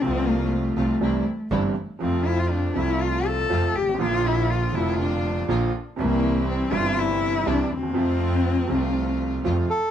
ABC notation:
X:1
M:4/4
L:1/16
Q:1/4=121
K:F
V:1 name="Bandoneon"
z16 | z16 | z16 | z16 |
z12 z2 A2 |]
V:2 name="Cello"
C2 B,2 A,8- A,2 z2 | C2 E F D2 E2 F2 A4 G2 | F2 E2 F2 E2 D6 z2 | B,4 C2 F2 E4 D2 C2- |
C12 z4 |]
V:3 name="String section"
[A,CF]6 [A,CF]2 [CDE]2 z2 [CDE]2 z2 | [A,CF]6 [A,CF]6 [A,CF]2 z2 | [B,DF]6 [B,DF]6 [B,DF]2 z2 | [G,CE]6 [G,CE]6 [G,CE]2 z2 |
[A,CF]6 [A,CF]6 [A,CF]2 z2 |]
V:4 name="Upright piano" clef=bass
[C,,C,F,A,F]6 [C,,C,F,A,F]2 [C,,C,E,G,D]2 z2 [G,,,G,,C,E,G,D]2 z2 | [F,,C,F,A,F]6 [C,,C,F,A,F]6 [F,,C,F,A,F]2 z/2 G,,,/2 _A,,,/2 =A,,,/2 | [B,,,B,,D,F,B,F]6 [F,,,F,,D,F,B,F]6 [B,,,B,,D,F,B,F]2 z2 | [C,,C,E,G,E]6 [G,,,G,,C,E,G,E]6 [C,,C,E,G,E]2 z/2 D,,/2 _E,,/2 =E,,/2 |
[F,,C,F,A,F]6 [C,,C,F,A,F]6 [F,,C,F,A,F]2 z2 |]
V:5 name="Double bass" clef=bass
C,,6 C,,2 C,,2 z2 G,,,2 z2 | F,,6 C,,6 F,,2 _A,,,2 | B,,,6 F,,,6 B,,,2 z2 | C,,6 G,,,6 C,,2 _E,,2 |
F,,6 C,,6 F,,2 z2 |]